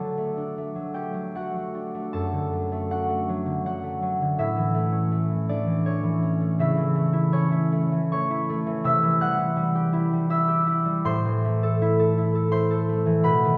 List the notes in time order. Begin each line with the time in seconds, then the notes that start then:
Already playing: D3 F#3 A3 D4 A4 D5 A5 B5
0.17 A3
0.37 D4
0.58 A3
0.75 F#3
0.94 A3 G4 G5
1.14 F#3
1.35 A3 F#4 F#5
1.54 F#3
1.75 D4
1.94 A3
2.13 F#2 A4 A5
2.32 D3
2.53 F#3
2.72 A3
2.91 D4 F#4 F#5
3.09 A3
3.29 F#3
3.46 D3
3.66 F#3 F#4 F#5
3.83 A3
4.02 F#3
4.21 D3
4.38 A2 E4 E5
4.56 E3
4.74 A3
4.92 C#4
5.12 A3
5.30 E3
5.49 A3 D4 D5
5.66 E3
5.86 A3 C#4 C#5
6.04 E3
6.22 C#4
6.41 A3
6.59 C#3 E4 E5
6.77 E3
6.95 A3
7.13 E4
7.32 A3 C#4 C#5
7.51 E4
7.72 A3
7.92 E3
8.12 A3 C#5 C#6
8.30 E4
8.50 A3
8.66 E3
8.84 C3 E5 E6
9.03 E3
9.21 G3 F#5 F#6
9.39 E4
9.56 G3
9.75 G4
9.93 E4
10.13 G3
10.30 E4 E5 E6
10.48 G4
10.67 E4
10.85 G3
11.05 A2 C5 C6
11.25 E3
11.45 A3
11.63 A4
11.82 E4
12.00 A4
12.18 E4
12.35 A4
12.52 E4 C5 C6
12.71 A4
12.89 A3
13.06 E3
13.23 B2 B4 B5
13.45 D#3